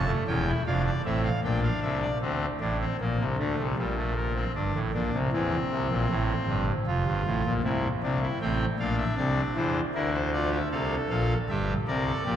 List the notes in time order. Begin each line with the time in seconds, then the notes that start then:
Already playing: F1 F2 A5
0.07 A3
0.27 E1 E2 C#4 G5
0.47 E4
0.67 F1 F2 D4 F5
0.86 D5
1.05 A1 A2 C4 E5
1.25 F5
1.44 A#1 A#2 D4 G5
1.64 F5
1.82 C2 C3 E5
2.02 D5
2.22 D2 D3 C4
2.60 A1 A2 D4
2.80 C4
3.00 A#1 A#2 A#3
3.19 C2 C3
3.38 D2 D3 A3
3.59 C2 C3
3.78 A#1 A#2 G3
3.97 A3
4.16 A#3
4.35 C4
4.55 G1 G2 D4
4.75 A1 A2
4.94 A#1 A#2 D4
5.13 C2 C3
5.33 E2 E3 C4
5.71 C2 C3
5.90 A#1 A#2
6.09 A1 A2
6.47 G1 G2
6.86 F1 F2 F4
7.05 G1 G2
7.26 A1 A2
7.44 A#1 A#2
7.64 C2 C3 E4
8.03 C2 C3 D4
8.22 E4
8.41 A1 A2 C4 G5
8.79 A#1 A#2 D4 F5
8.98 E5
9.17 C2 C3 D5
9.56 E2 E3 C5
9.94 D2 D3 E4 A#4
10.14 C5
10.33 F4 D5
10.52 E5
10.71 C2 C3 A4 F5
11.10 A#1 A#2 F5
11.49 G1 G2 G4 E5
11.88 C2 C3 A#4 D5
12.07 A4
12.26 A#1 A#2 G4